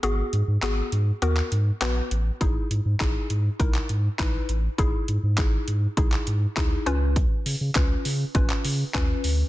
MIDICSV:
0, 0, Header, 1, 4, 480
1, 0, Start_track
1, 0, Tempo, 594059
1, 26, Time_signature, 4, 2, 24, 8
1, 7666, End_track
2, 0, Start_track
2, 0, Title_t, "Synth pluck"
2, 0, Program_c, 0, 84
2, 24, Note_on_c, 0, 59, 95
2, 26, Note_on_c, 0, 66, 87
2, 28, Note_on_c, 0, 68, 103
2, 259, Note_off_c, 0, 59, 0
2, 260, Note_off_c, 0, 66, 0
2, 261, Note_off_c, 0, 68, 0
2, 505, Note_on_c, 0, 59, 94
2, 507, Note_on_c, 0, 66, 86
2, 511, Note_on_c, 0, 68, 103
2, 739, Note_off_c, 0, 59, 0
2, 741, Note_off_c, 0, 66, 0
2, 742, Note_off_c, 0, 68, 0
2, 985, Note_on_c, 0, 59, 92
2, 987, Note_on_c, 0, 66, 82
2, 989, Note_on_c, 0, 70, 95
2, 1220, Note_off_c, 0, 59, 0
2, 1221, Note_off_c, 0, 66, 0
2, 1222, Note_off_c, 0, 70, 0
2, 1465, Note_on_c, 0, 59, 93
2, 1467, Note_on_c, 0, 66, 89
2, 1469, Note_on_c, 0, 71, 104
2, 1699, Note_off_c, 0, 59, 0
2, 1701, Note_off_c, 0, 66, 0
2, 1702, Note_off_c, 0, 71, 0
2, 1945, Note_on_c, 0, 63, 88
2, 1947, Note_on_c, 0, 64, 78
2, 1948, Note_on_c, 0, 68, 93
2, 2179, Note_off_c, 0, 63, 0
2, 2180, Note_off_c, 0, 64, 0
2, 2181, Note_off_c, 0, 68, 0
2, 2423, Note_on_c, 0, 63, 86
2, 2425, Note_on_c, 0, 64, 77
2, 2427, Note_on_c, 0, 68, 95
2, 2659, Note_off_c, 0, 63, 0
2, 2659, Note_off_c, 0, 64, 0
2, 2661, Note_off_c, 0, 68, 0
2, 2904, Note_on_c, 0, 63, 85
2, 2907, Note_on_c, 0, 64, 75
2, 2908, Note_on_c, 0, 70, 93
2, 3139, Note_off_c, 0, 63, 0
2, 3140, Note_off_c, 0, 64, 0
2, 3141, Note_off_c, 0, 70, 0
2, 3382, Note_on_c, 0, 63, 95
2, 3385, Note_on_c, 0, 64, 88
2, 3387, Note_on_c, 0, 71, 103
2, 3618, Note_off_c, 0, 63, 0
2, 3620, Note_off_c, 0, 64, 0
2, 3621, Note_off_c, 0, 71, 0
2, 3864, Note_on_c, 0, 63, 96
2, 3867, Note_on_c, 0, 64, 91
2, 3869, Note_on_c, 0, 68, 107
2, 4099, Note_off_c, 0, 63, 0
2, 4101, Note_off_c, 0, 64, 0
2, 4101, Note_off_c, 0, 68, 0
2, 4343, Note_on_c, 0, 63, 95
2, 4344, Note_on_c, 0, 64, 85
2, 4346, Note_on_c, 0, 68, 104
2, 4578, Note_off_c, 0, 63, 0
2, 4579, Note_off_c, 0, 64, 0
2, 4580, Note_off_c, 0, 68, 0
2, 4824, Note_on_c, 0, 63, 87
2, 4826, Note_on_c, 0, 64, 83
2, 4828, Note_on_c, 0, 68, 100
2, 5059, Note_off_c, 0, 63, 0
2, 5060, Note_off_c, 0, 64, 0
2, 5061, Note_off_c, 0, 68, 0
2, 5304, Note_on_c, 0, 63, 99
2, 5307, Note_on_c, 0, 64, 86
2, 5308, Note_on_c, 0, 68, 104
2, 5539, Note_off_c, 0, 63, 0
2, 5540, Note_off_c, 0, 64, 0
2, 5541, Note_off_c, 0, 68, 0
2, 5544, Note_on_c, 0, 61, 89
2, 5546, Note_on_c, 0, 65, 83
2, 5548, Note_on_c, 0, 71, 102
2, 6121, Note_off_c, 0, 61, 0
2, 6122, Note_off_c, 0, 65, 0
2, 6123, Note_off_c, 0, 71, 0
2, 6265, Note_on_c, 0, 61, 85
2, 6266, Note_on_c, 0, 65, 81
2, 6268, Note_on_c, 0, 71, 97
2, 6499, Note_off_c, 0, 61, 0
2, 6500, Note_off_c, 0, 65, 0
2, 6501, Note_off_c, 0, 71, 0
2, 6744, Note_on_c, 0, 61, 82
2, 6746, Note_on_c, 0, 65, 79
2, 6747, Note_on_c, 0, 71, 98
2, 6979, Note_off_c, 0, 61, 0
2, 6980, Note_off_c, 0, 65, 0
2, 6981, Note_off_c, 0, 71, 0
2, 7225, Note_on_c, 0, 61, 97
2, 7227, Note_on_c, 0, 65, 87
2, 7230, Note_on_c, 0, 71, 106
2, 7460, Note_off_c, 0, 61, 0
2, 7460, Note_off_c, 0, 65, 0
2, 7462, Note_off_c, 0, 71, 0
2, 7666, End_track
3, 0, Start_track
3, 0, Title_t, "Sub bass"
3, 0, Program_c, 1, 38
3, 25, Note_on_c, 1, 32, 99
3, 181, Note_off_c, 1, 32, 0
3, 265, Note_on_c, 1, 44, 109
3, 343, Note_off_c, 1, 44, 0
3, 385, Note_on_c, 1, 44, 96
3, 463, Note_off_c, 1, 44, 0
3, 503, Note_on_c, 1, 32, 100
3, 660, Note_off_c, 1, 32, 0
3, 744, Note_on_c, 1, 44, 107
3, 900, Note_off_c, 1, 44, 0
3, 985, Note_on_c, 1, 39, 93
3, 1141, Note_off_c, 1, 39, 0
3, 1225, Note_on_c, 1, 44, 96
3, 1382, Note_off_c, 1, 44, 0
3, 1465, Note_on_c, 1, 34, 94
3, 1621, Note_off_c, 1, 34, 0
3, 1705, Note_on_c, 1, 33, 103
3, 1861, Note_off_c, 1, 33, 0
3, 1946, Note_on_c, 1, 32, 105
3, 2102, Note_off_c, 1, 32, 0
3, 2184, Note_on_c, 1, 44, 108
3, 2262, Note_off_c, 1, 44, 0
3, 2305, Note_on_c, 1, 44, 97
3, 2383, Note_off_c, 1, 44, 0
3, 2428, Note_on_c, 1, 32, 104
3, 2583, Note_off_c, 1, 32, 0
3, 2665, Note_on_c, 1, 44, 95
3, 2821, Note_off_c, 1, 44, 0
3, 2906, Note_on_c, 1, 35, 106
3, 3062, Note_off_c, 1, 35, 0
3, 3145, Note_on_c, 1, 44, 104
3, 3301, Note_off_c, 1, 44, 0
3, 3387, Note_on_c, 1, 34, 87
3, 3543, Note_off_c, 1, 34, 0
3, 3625, Note_on_c, 1, 33, 103
3, 3782, Note_off_c, 1, 33, 0
3, 3866, Note_on_c, 1, 32, 105
3, 4022, Note_off_c, 1, 32, 0
3, 4106, Note_on_c, 1, 44, 105
3, 4184, Note_off_c, 1, 44, 0
3, 4226, Note_on_c, 1, 44, 96
3, 4347, Note_on_c, 1, 32, 104
3, 4359, Note_off_c, 1, 44, 0
3, 4503, Note_off_c, 1, 32, 0
3, 4586, Note_on_c, 1, 44, 100
3, 4742, Note_off_c, 1, 44, 0
3, 4825, Note_on_c, 1, 35, 92
3, 4981, Note_off_c, 1, 35, 0
3, 5066, Note_on_c, 1, 44, 94
3, 5222, Note_off_c, 1, 44, 0
3, 5306, Note_on_c, 1, 38, 96
3, 5462, Note_off_c, 1, 38, 0
3, 5545, Note_on_c, 1, 37, 103
3, 5858, Note_off_c, 1, 37, 0
3, 6025, Note_on_c, 1, 49, 100
3, 6104, Note_off_c, 1, 49, 0
3, 6147, Note_on_c, 1, 49, 95
3, 6225, Note_off_c, 1, 49, 0
3, 6267, Note_on_c, 1, 37, 98
3, 6422, Note_off_c, 1, 37, 0
3, 6506, Note_on_c, 1, 49, 104
3, 6662, Note_off_c, 1, 49, 0
3, 6746, Note_on_c, 1, 32, 105
3, 6902, Note_off_c, 1, 32, 0
3, 6986, Note_on_c, 1, 49, 105
3, 7142, Note_off_c, 1, 49, 0
3, 7227, Note_on_c, 1, 39, 100
3, 7383, Note_off_c, 1, 39, 0
3, 7466, Note_on_c, 1, 38, 102
3, 7622, Note_off_c, 1, 38, 0
3, 7666, End_track
4, 0, Start_track
4, 0, Title_t, "Drums"
4, 25, Note_on_c, 9, 42, 80
4, 106, Note_off_c, 9, 42, 0
4, 266, Note_on_c, 9, 42, 50
4, 347, Note_off_c, 9, 42, 0
4, 505, Note_on_c, 9, 39, 110
4, 506, Note_on_c, 9, 42, 79
4, 586, Note_off_c, 9, 39, 0
4, 587, Note_off_c, 9, 42, 0
4, 746, Note_on_c, 9, 42, 52
4, 827, Note_off_c, 9, 42, 0
4, 986, Note_on_c, 9, 42, 73
4, 1067, Note_off_c, 9, 42, 0
4, 1105, Note_on_c, 9, 39, 68
4, 1186, Note_off_c, 9, 39, 0
4, 1227, Note_on_c, 9, 42, 52
4, 1307, Note_off_c, 9, 42, 0
4, 1467, Note_on_c, 9, 42, 73
4, 1468, Note_on_c, 9, 39, 109
4, 1548, Note_off_c, 9, 42, 0
4, 1549, Note_off_c, 9, 39, 0
4, 1707, Note_on_c, 9, 42, 52
4, 1788, Note_off_c, 9, 42, 0
4, 1946, Note_on_c, 9, 36, 113
4, 1947, Note_on_c, 9, 42, 85
4, 2027, Note_off_c, 9, 36, 0
4, 2027, Note_off_c, 9, 42, 0
4, 2189, Note_on_c, 9, 42, 51
4, 2269, Note_off_c, 9, 42, 0
4, 2426, Note_on_c, 9, 39, 109
4, 2428, Note_on_c, 9, 36, 113
4, 2428, Note_on_c, 9, 42, 80
4, 2507, Note_off_c, 9, 39, 0
4, 2508, Note_off_c, 9, 36, 0
4, 2508, Note_off_c, 9, 42, 0
4, 2667, Note_on_c, 9, 42, 54
4, 2747, Note_off_c, 9, 42, 0
4, 2906, Note_on_c, 9, 36, 115
4, 2906, Note_on_c, 9, 42, 72
4, 2987, Note_off_c, 9, 36, 0
4, 2987, Note_off_c, 9, 42, 0
4, 3025, Note_on_c, 9, 39, 69
4, 3106, Note_off_c, 9, 39, 0
4, 3145, Note_on_c, 9, 42, 51
4, 3226, Note_off_c, 9, 42, 0
4, 3387, Note_on_c, 9, 36, 115
4, 3387, Note_on_c, 9, 42, 75
4, 3388, Note_on_c, 9, 39, 109
4, 3468, Note_off_c, 9, 36, 0
4, 3468, Note_off_c, 9, 42, 0
4, 3469, Note_off_c, 9, 39, 0
4, 3627, Note_on_c, 9, 42, 52
4, 3708, Note_off_c, 9, 42, 0
4, 3866, Note_on_c, 9, 36, 117
4, 3866, Note_on_c, 9, 42, 81
4, 3947, Note_off_c, 9, 36, 0
4, 3947, Note_off_c, 9, 42, 0
4, 4107, Note_on_c, 9, 42, 49
4, 4187, Note_off_c, 9, 42, 0
4, 4346, Note_on_c, 9, 39, 112
4, 4347, Note_on_c, 9, 36, 120
4, 4347, Note_on_c, 9, 42, 81
4, 4426, Note_off_c, 9, 39, 0
4, 4428, Note_off_c, 9, 36, 0
4, 4428, Note_off_c, 9, 42, 0
4, 4586, Note_on_c, 9, 42, 53
4, 4667, Note_off_c, 9, 42, 0
4, 4825, Note_on_c, 9, 36, 117
4, 4825, Note_on_c, 9, 42, 75
4, 4906, Note_off_c, 9, 36, 0
4, 4906, Note_off_c, 9, 42, 0
4, 4945, Note_on_c, 9, 39, 67
4, 5026, Note_off_c, 9, 39, 0
4, 5065, Note_on_c, 9, 42, 53
4, 5146, Note_off_c, 9, 42, 0
4, 5306, Note_on_c, 9, 42, 75
4, 5307, Note_on_c, 9, 36, 114
4, 5307, Note_on_c, 9, 39, 118
4, 5387, Note_off_c, 9, 42, 0
4, 5388, Note_off_c, 9, 36, 0
4, 5388, Note_off_c, 9, 39, 0
4, 5547, Note_on_c, 9, 42, 51
4, 5628, Note_off_c, 9, 42, 0
4, 5786, Note_on_c, 9, 36, 114
4, 5786, Note_on_c, 9, 42, 79
4, 5867, Note_off_c, 9, 36, 0
4, 5867, Note_off_c, 9, 42, 0
4, 6027, Note_on_c, 9, 46, 71
4, 6108, Note_off_c, 9, 46, 0
4, 6265, Note_on_c, 9, 39, 115
4, 6266, Note_on_c, 9, 42, 79
4, 6267, Note_on_c, 9, 36, 115
4, 6346, Note_off_c, 9, 39, 0
4, 6347, Note_off_c, 9, 36, 0
4, 6347, Note_off_c, 9, 42, 0
4, 6506, Note_on_c, 9, 46, 76
4, 6586, Note_off_c, 9, 46, 0
4, 6745, Note_on_c, 9, 36, 120
4, 6745, Note_on_c, 9, 42, 75
4, 6826, Note_off_c, 9, 36, 0
4, 6826, Note_off_c, 9, 42, 0
4, 6865, Note_on_c, 9, 39, 69
4, 6946, Note_off_c, 9, 39, 0
4, 6985, Note_on_c, 9, 46, 72
4, 7066, Note_off_c, 9, 46, 0
4, 7226, Note_on_c, 9, 42, 74
4, 7227, Note_on_c, 9, 36, 107
4, 7227, Note_on_c, 9, 39, 114
4, 7307, Note_off_c, 9, 42, 0
4, 7308, Note_off_c, 9, 36, 0
4, 7308, Note_off_c, 9, 39, 0
4, 7466, Note_on_c, 9, 46, 77
4, 7547, Note_off_c, 9, 46, 0
4, 7666, End_track
0, 0, End_of_file